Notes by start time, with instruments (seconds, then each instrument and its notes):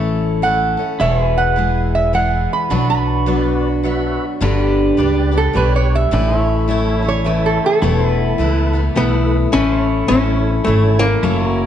Already playing: upright bass A1, steel-string acoustic guitar E3 A3 C#4 A4, pedal steel guitar E4 A4 C#5
0.42 steel-string acoustic guitar E3 A3 C#4 A4, resonator guitar played with a steel bar F#5
0.77 steel-string acoustic guitar A3 C#4 A4
1.00 upright bass E1, steel-string acoustic guitar E2 B2 E3 G#3 B3 G#4, pedal steel guitar E4 A4 C#5, resonator guitar played with a steel bar E5
1.21 pedal steel guitar G#4
1.27 pedal steel guitar B4
1.38 resonator guitar played with a steel bar F#5
1.56 steel-string acoustic guitar E3 G#3 B3 G#4
1.95 resonator guitar played with a steel bar E5
2.13 steel-string acoustic guitar E3 G#3 B3 G#4, resonator guitar played with a steel bar F#5
2.53 resonator guitar played with a steel bar B5
2.70 upright bass B1, steel-string acoustic guitar B2 F#3 B3 D4 F#4, pedal steel guitar D4 F#4 B4
2.90 resonator guitar played with a steel bar B5
3.26 steel-string acoustic guitar F#3 B3 D4 F#4, tonewheel organ F#4 B4 D5
3.83 steel-string acoustic guitar F#3 B3 D4 F#4, tonewheel organ F#4 B4 E5
4.41 upright bass G1, steel-string acoustic guitar G2 D3 G3 B3 D4 G4, pedal steel guitar D4 F#4
4.45 pedal steel guitar B4
4.64 pedal steel guitar G4
4.97 upright bass C#2, steel-string acoustic guitar G3 B3 D4 G4, tonewheel organ G4 B4 D5
5.31 steel-string acoustic guitar G3 B3 D4 G4
5.38 resonator guitar played with a steel bar A4
5.53 upright bass B1, steel-string acoustic guitar G3 B3 D4 G4, tonewheel organ G4 B4 C#5, resonator guitar played with a steel bar B4
5.76 resonator guitar played with a steel bar C#5
5.95 resonator guitar played with a steel bar E5
6.11 upright bass A1, steel-string acoustic guitar A2 E3 A3 C#4 E4, pedal steel guitar D4 G4
6.15 pedal steel guitar B4
6.39 pedal steel guitar E4 A4 C#5
6.68 steel-string acoustic guitar E3 A3 C#4 E4, tonewheel organ E4 A4 C#5
7.02 steel-string acoustic guitar A3 C#4 E4
7.09 resonator guitar played with a steel bar C#5
7.24 steel-string acoustic guitar E3 A3 C#4 E4, tonewheel organ E4 A4 C#5, resonator guitar played with a steel bar B4
7.46 resonator guitar played with a steel bar A4
7.66 resonator guitar played with a steel bar A4
7.82 upright bass E1, steel-string acoustic guitar E2 B2 E3 A3 B3 E4, pedal steel guitar E4 A4 C#5
8.09 pedal steel guitar B4
8.38 upright bass C#2, steel-string acoustic guitar E3 A3 B3 E4, tonewheel organ E4 A4 B4
8.73 steel-string acoustic guitar E3 A3 B3 E4
8.95 upright bass B1, steel-string acoustic guitar E3 A3 B3 E4, tonewheel organ E4 A4 B4
9.52 upright bass A1, steel-string acoustic guitar A2 E3 A3 C#4 E4, pedal steel guitar E4 A4 B4
9.81 pedal steel guitar C#5
10.09 upright bass A1, steel-string acoustic guitar E3 A3 C#4 E4, tonewheel organ C#4 E4 A4 C#5
10.65 upright bass G#1, steel-string acoustic guitar E3 A3 C#4 E4, tonewheel organ C#4 E4 A4 C#5
10.99 steel-string acoustic guitar A3 C#4 E4, hollow-body jazz guitar A#3
11.23 upright bass F#1, steel-string acoustic guitar F#3 A#3 C#4 E4, pedal steel guitar E4 A4 C#5
11.44 pedal steel guitar A#4
11.48 pedal steel guitar F#4